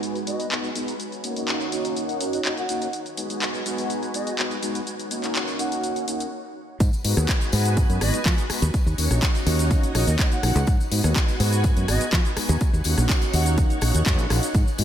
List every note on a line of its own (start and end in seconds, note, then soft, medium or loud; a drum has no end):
0.00 0.24 G#3 medium
0.00 0.24 B3 medium
0.00 0.24 D#4 medium
0.00 0.24 F#4 loud
0.00 0.98 F#4 medium
0.00 0.98 B4 medium
0.00 0.98 G#5 medium
0.00 closed hi-hat soft
0.00 shaker soft
0.15 closed hi-hat soft
0.15 shaker soft
0.27 0.45 G#3 medium
0.27 0.45 B3 medium
0.27 0.45 D#4 medium
0.27 0.45 F#4 loud
0.27 0.47 D#5 medium
0.27 closed hi-hat medium
0.27 shaker medium
0.40 closed hi-hat soft
0.40 shaker soft
0.51 0.69 G#3 medium
0.51 0.69 B3 medium
0.51 0.69 D#4 medium
0.51 0.69 F#4 medium
0.51 clap loud
0.51 closed hi-hat soft
0.51 shaker soft
0.64 closed hi-hat soft
0.64 shaker soft
0.75 0.93 G#3 medium
0.75 0.93 B3 medium
0.75 0.93 D#4 medium
0.75 0.94 F#4 medium
0.75 closed hi-hat medium
0.75 shaker medium
0.88 closed hi-hat soft
0.88 shaker soft
1.00 2.91 D#4 medium
1.00 2.91 C#5 medium
1.00 2.91 F#5 medium
1.00 closed hi-hat soft
1.00 shaker soft
1.12 closed hi-hat soft
1.12 shaker soft
1.23 1.34 A#3 medium
1.23 1.34 C#4 medium
1.23 1.35 D#4 medium
1.23 1.35 F#4 medium
1.23 closed hi-hat medium
1.23 shaker medium
1.36 1.69 A#3 medium
1.36 1.69 C#4 medium
1.36 1.70 D#4 medium
1.36 1.70 F#4 medium
1.36 closed hi-hat soft
1.36 shaker soft
1.48 clap loud
1.48 closed hi-hat soft
1.48 shaker soft
1.61 closed hi-hat soft
1.61 shaker soft
1.72 2.18 A#3 medium
1.72 2.18 C#4 medium
1.72 2.18 D#4 medium
1.72 2.18 F#4 medium
1.72 closed hi-hat medium
1.72 shaker medium
1.85 closed hi-hat soft
1.85 shaker soft
1.96 closed hi-hat soft
1.96 shaker soft
2.09 closed hi-hat soft
2.09 shaker soft
2.20 2.38 A#3 medium
2.20 2.39 C#4 medium
2.20 2.39 D#4 medium
2.20 2.39 F#4 loud
2.20 closed hi-hat medium
2.20 shaker medium
2.33 2.41 D#5 medium
2.33 closed hi-hat soft
2.33 shaker soft
2.45 2.63 A#3 medium
2.45 2.63 C#4 medium
2.45 2.63 D#4 medium
2.45 2.63 F#4 medium
2.45 2.53 D#5 medium
2.45 clap loud
2.45 closed hi-hat soft
2.45 shaker soft
2.57 2.98 F#5 medium
2.57 closed hi-hat soft
2.57 shaker soft
2.69 2.87 A#3 medium
2.69 2.87 C#4 medium
2.69 2.87 D#4 medium
2.69 2.87 F#4 medium
2.69 closed hi-hat medium
2.69 shaker medium
2.82 closed hi-hat soft
2.82 shaker soft
2.93 4.85 F#4 medium
2.93 4.85 B4 medium
2.93 4.85 G#5 medium
2.93 closed hi-hat soft
2.93 shaker soft
3.06 closed hi-hat soft
3.06 shaker soft
3.17 3.28 G#3 medium
3.17 3.28 B3 medium
3.17 3.28 D#4 medium
3.17 3.28 F#4 medium
3.17 closed hi-hat medium
3.17 shaker medium
3.30 3.63 G#3 medium
3.30 3.63 B3 medium
3.30 3.63 D#4 medium
3.30 3.63 F#4 medium
3.30 closed hi-hat soft
3.30 shaker soft
3.42 clap loud
3.42 closed hi-hat soft
3.42 shaker soft
3.54 closed hi-hat soft
3.54 shaker soft
3.65 4.11 G#3 medium
3.65 4.11 B3 medium
3.65 4.11 D#4 medium
3.65 4.12 F#4 loud
3.65 closed hi-hat medium
3.65 shaker medium
3.78 closed hi-hat soft
3.78 shaker soft
3.90 closed hi-hat soft
3.90 shaker soft
4.03 closed hi-hat soft
4.03 shaker soft
4.14 4.32 G#3 medium
4.14 4.32 B3 medium
4.14 4.32 D#4 medium
4.14 4.32 F#4 loud
4.14 4.34 D#5 medium
4.14 closed hi-hat medium
4.14 shaker medium
4.27 closed hi-hat soft
4.27 shaker soft
4.38 4.56 G#3 medium
4.38 4.56 B3 medium
4.38 4.56 D#4 medium
4.38 4.57 F#4 loud
4.38 clap loud
4.38 closed hi-hat soft
4.38 shaker soft
4.51 closed hi-hat soft
4.51 shaker soft
4.62 4.80 G#3 medium
4.62 4.80 B3 medium
4.62 4.81 D#4 medium
4.62 4.81 F#4 medium
4.62 closed hi-hat medium
4.62 shaker medium
4.75 closed hi-hat medium
4.75 shaker soft
4.87 6.31 D#4 medium
4.87 6.31 C#5 medium
4.87 6.31 F#5 medium
4.87 closed hi-hat medium
4.87 shaker soft
4.99 closed hi-hat soft
4.99 shaker soft
5.11 5.21 A#3 medium
5.11 5.22 C#4 medium
5.11 5.22 D#4 medium
5.11 5.22 F#4 medium
5.11 closed hi-hat medium
5.11 shaker medium
5.23 5.56 A#3 medium
5.23 5.56 C#4 medium
5.23 5.57 D#4 medium
5.23 5.57 F#4 medium
5.23 clap soft
5.23 closed hi-hat medium
5.23 shaker soft
5.35 clap loud
5.35 closed hi-hat medium
5.35 shaker soft
5.48 closed hi-hat soft
5.48 shaker soft
5.59 6.05 A#3 medium
5.59 6.05 C#4 medium
5.59 6.05 D#4 medium
5.59 6.05 F#4 medium
5.59 6.08 F#5 medium
5.59 closed hi-hat medium
5.59 shaker medium
5.72 closed hi-hat soft
5.72 shaker soft
5.84 closed hi-hat soft
5.84 shaker soft
5.96 closed hi-hat soft
5.96 shaker soft
6.07 6.25 A#3 medium
6.07 6.26 C#4 medium
6.07 6.26 D#4 medium
6.07 6.26 F#4 loud
6.07 closed hi-hat medium
6.07 shaker medium
6.20 closed hi-hat medium
6.20 shaker soft
6.80 6.89 G#2 loud
6.80 8.72 F#4 medium
6.80 8.72 B4 medium
6.80 8.72 G#5 medium
6.80 kick loud
6.80 closed hi-hat medium
6.80 tambourine medium
6.80 shaker medium
6.93 tambourine soft
6.93 shaker soft
7.04 7.13 G#2 medium
7.04 7.15 G#3 medium
7.04 7.15 B3 medium
7.04 7.15 D#4 medium
7.04 7.15 F#4 medium
7.04 open hi-hat loud
7.04 tambourine medium
7.16 7.25 D#2 loud
7.16 7.50 G#3 medium
7.16 7.50 B3 medium
7.16 7.50 D#4 medium
7.16 7.50 F#4 medium
7.16 cross-stick medium
7.16 closed hi-hat medium
7.16 tambourine soft
7.16 shaker medium
7.28 kick loud
7.28 clap loud
7.28 closed hi-hat medium
7.28 tambourine medium
7.28 shaker medium
7.41 closed hi-hat soft
7.41 tambourine soft
7.41 shaker soft
7.52 7.83 G#2 loud
7.52 7.98 G#3 medium
7.52 7.98 B3 medium
7.52 7.99 D#4 medium
7.52 7.99 F#4 loud
7.52 open hi-hat medium
7.52 tambourine medium
7.65 closed hi-hat medium
7.65 tambourine soft
7.65 shaker medium
7.77 kick loud
7.77 closed hi-hat medium
7.77 tambourine soft
7.77 shaker medium
7.90 7.97 F#2 loud
7.90 closed hi-hat soft
7.90 shaker soft
8.01 8.09 G#1 medium
8.01 8.19 G#3 medium
8.01 8.19 B3 medium
8.01 8.19 D#4 medium
8.01 8.19 F#4 loud
8.01 8.22 D#5 medium
8.01 cross-stick medium
8.01 open hi-hat loud
8.01 tambourine medium
8.14 muted fingered electric bass stroke soft
8.14 closed hi-hat medium
8.14 tambourine soft
8.14 shaker medium
8.25 8.34 F3 loud
8.25 8.43 G#3 medium
8.25 8.43 B3 medium
8.25 8.43 D#4 medium
8.25 8.44 F#4 loud
8.25 kick loud
8.25 clap loud
8.25 closed hi-hat medium
8.25 tambourine medium
8.25 shaker medium
8.38 closed hi-hat soft
8.38 shaker soft
8.49 8.67 G#3 medium
8.49 8.68 B3 medium
8.49 8.68 D#4 medium
8.49 8.68 F#4 loud
8.49 muted fingered electric bass stroke soft
8.49 cross-stick medium
8.49 open hi-hat medium
8.49 tambourine medium
8.62 8.70 D#2 loud
8.62 closed hi-hat medium
8.62 shaker medium
8.74 10.65 D#4 medium
8.74 10.65 C#5 medium
8.74 10.65 F#5 medium
8.74 kick loud
8.74 closed hi-hat medium
8.74 tambourine medium
8.74 shaker medium
8.86 8.94 D#2 loud
8.86 tambourine soft
8.86 shaker soft
8.98 9.06 D#2 medium
8.98 9.09 A#3 medium
8.98 9.09 C#4 medium
8.98 9.09 D#4 medium
8.98 9.09 F#4 medium
8.98 open hi-hat loud
8.98 tambourine loud
9.10 9.18 A#1 loud
9.10 9.43 A#3 medium
9.10 9.44 C#4 medium
9.10 9.44 D#4 medium
9.10 9.44 F#4 medium
9.10 cross-stick medium
9.10 closed hi-hat medium
9.10 tambourine soft
9.10 shaker medium
9.22 kick loud
9.22 clap loud
9.22 closed hi-hat medium
9.22 tambourine medium
9.22 shaker medium
9.35 closed hi-hat soft
9.35 tambourine soft
9.35 shaker soft
9.46 9.76 D#2 loud
9.46 9.92 A#3 medium
9.46 9.92 C#4 medium
9.46 9.92 D#4 medium
9.46 9.92 F#4 loud
9.46 open hi-hat loud
9.46 tambourine medium
9.59 closed hi-hat medium
9.59 tambourine soft
9.59 shaker medium
9.71 kick loud
9.71 closed hi-hat medium
9.71 tambourine medium
9.71 shaker medium
9.83 muted fingered electric bass stroke soft
9.83 closed hi-hat soft
9.83 shaker soft
9.95 10.03 A#1 medium
9.95 10.13 A#3 medium
9.95 10.13 C#4 medium
9.95 10.13 D#4 medium
9.95 10.13 F#4 loud
9.95 cross-stick medium
9.95 open hi-hat loud
9.95 tambourine loud
10.07 10.15 D#2 loud
10.07 10.15 D#5 medium
10.07 closed hi-hat medium
10.07 tambourine soft
10.07 shaker medium
10.19 10.37 A#3 medium
10.19 10.37 C#4 medium
10.19 10.37 D#4 medium
10.19 10.37 F#4 medium
10.19 10.27 D#5 medium
10.19 kick loud
10.19 clap loud
10.19 closed hi-hat medium
10.19 tambourine medium
10.19 shaker medium
10.31 10.72 F#5 medium
10.31 closed hi-hat soft
10.31 shaker soft
10.43 10.51 A#1 medium
10.43 10.61 A#3 medium
10.43 10.61 C#4 medium
10.43 10.61 D#4 medium
10.43 10.61 F#4 medium
10.43 cross-stick medium
10.43 open hi-hat medium
10.43 tambourine medium
10.55 10.63 C#2 loud
10.55 closed hi-hat medium
10.55 tambourine soft
10.55 shaker medium
10.67 10.76 G#2 loud
10.67 12.59 F#4 medium
10.67 12.59 B4 medium
10.67 12.59 G#5 medium
10.67 kick loud
10.67 closed hi-hat medium
10.67 tambourine medium
10.67 shaker medium
10.80 tambourine soft
10.80 shaker soft
10.91 11.00 G#2 medium
10.91 11.02 G#3 medium
10.91 11.02 B3 medium
10.91 11.02 D#4 medium
10.91 11.03 F#4 medium
10.91 open hi-hat loud
10.91 tambourine loud
11.04 11.12 D#2 loud
11.04 11.37 G#3 medium
11.04 11.37 B3 medium
11.04 11.37 D#4 medium
11.04 11.37 F#4 medium
11.04 cross-stick medium
11.04 closed hi-hat medium
11.04 tambourine soft
11.04 shaker medium
11.16 kick loud
11.16 clap loud
11.16 closed hi-hat medium
11.16 tambourine medium
11.16 shaker medium
11.28 closed hi-hat soft
11.28 tambourine soft
11.28 shaker soft
11.40 11.70 G#2 loud
11.40 11.85 G#3 loud
11.40 11.86 B3 medium
11.40 11.86 D#4 medium
11.40 11.86 F#4 loud
11.40 open hi-hat loud
11.40 tambourine medium
11.53 closed hi-hat medium
11.53 tambourine soft
11.53 shaker medium
11.64 kick loud
11.64 closed hi-hat medium
11.64 tambourine medium
11.64 shaker soft
11.77 11.84 F#2 loud
11.77 closed hi-hat soft
11.77 shaker soft
11.88 11.96 G#1 medium
11.88 12.06 G#3 medium
11.88 12.06 B3 medium
11.88 12.06 D#4 medium
11.88 12.06 F#4 loud
11.88 12.09 D#5 medium
11.88 cross-stick medium
11.88 open hi-hat loud
11.88 tambourine loud
12.01 closed hi-hat medium
12.01 tambourine soft
12.01 shaker medium
12.12 12.21 F3 loud
12.12 12.30 G#3 medium
12.12 12.31 B3 medium
12.12 12.31 D#4 medium
12.12 12.31 F#4 loud
12.12 kick loud
12.12 clap loud
12.12 closed hi-hat medium
12.12 tambourine soft
12.12 shaker medium
12.25 closed hi-hat soft
12.25 shaker soft
12.36 12.54 G#3 medium
12.36 12.55 B3 medium
12.36 12.55 D#4 medium
12.36 12.55 F#4 medium
12.36 muted fingered electric bass stroke soft
12.36 cross-stick medium
12.36 open hi-hat loud
12.36 tambourine medium
12.49 12.57 D#2 loud
12.49 closed hi-hat medium
12.49 tambourine soft
12.49 shaker medium
12.61 14.53 D#4 medium
12.61 14.53 C#5 medium
12.61 14.53 F#5 medium
12.61 kick loud
12.61 closed hi-hat medium
12.61 tambourine medium
12.61 shaker medium
12.73 12.81 D#2 loud
12.73 tambourine soft
12.73 shaker soft
12.84 12.93 D#2 medium
12.84 12.96 A#3 medium
12.84 12.96 C#4 medium
12.84 12.96 D#4 medium
12.84 12.96 F#4 medium
12.84 open hi-hat loud
12.84 tambourine loud
12.97 13.05 A#1 loud
12.97 13.31 A#3 medium
12.97 13.31 C#4 medium
12.97 13.31 D#4 medium
12.97 13.31 F#4 medium
12.97 cross-stick medium
12.97 closed hi-hat medium
12.97 tambourine soft
12.97 shaker medium
13.09 kick loud
13.09 clap loud
13.09 closed hi-hat medium
13.09 tambourine medium
13.09 shaker medium
13.21 closed hi-hat soft
13.21 tambourine soft
13.21 shaker soft
13.33 13.63 D#2 loud
13.33 13.79 A#3 loud
13.33 13.79 C#4 medium
13.33 13.79 D#4 medium
13.33 13.79 F#4 loud
13.33 13.82 F#5 medium
13.33 open hi-hat loud
13.33 tambourine loud
13.46 closed hi-hat medium
13.46 tambourine soft
13.46 shaker medium
13.58 kick loud
13.58 closed hi-hat medium
13.58 tambourine medium
13.58 shaker medium
13.70 closed hi-hat soft
13.70 shaker soft
13.81 13.90 A#1 medium
13.81 14.00 A#3 loud
13.81 14.00 C#4 medium
13.81 14.00 D#4 medium
13.81 14.00 F#4 loud
13.81 cross-stick medium
13.81 open hi-hat loud
13.81 tambourine medium
13.93 14.02 D#2 medium
13.93 closed hi-hat soft
13.93 tambourine soft
13.93 shaker medium
14.06 14.19 F#2 medium
14.06 14.24 A#3 medium
14.06 14.24 C#4 medium
14.06 14.24 D#4 medium
14.06 14.24 F#4 loud
14.06 kick loud
14.06 clap loud
14.06 closed hi-hat medium
14.06 tambourine medium
14.06 shaker medium
14.19 14.26 A#1 medium
14.19 closed hi-hat soft
14.19 shaker soft
14.30 14.38 A#1 medium
14.30 14.48 A#3 medium
14.30 14.48 C#4 medium
14.30 14.48 D#4 medium
14.30 14.48 F#4 medium
14.30 cross-stick medium
14.30 open hi-hat medium
14.30 tambourine medium
14.43 closed hi-hat medium
14.43 tambourine soft
14.43 shaker medium
14.55 14.63 G#2 loud
14.55 14.84 F#4 medium
14.55 14.84 B4 medium
14.55 14.84 G#5 medium
14.55 kick loud
14.55 closed hi-hat medium
14.55 tambourine medium
14.55 shaker medium
14.68 tambourine soft
14.68 shaker soft
14.78 14.84 G#2 medium
14.78 14.84 G#3 medium
14.78 14.84 B3 medium
14.78 14.84 D#4 medium
14.78 14.84 F#4 medium
14.78 open hi-hat loud
14.78 tambourine medium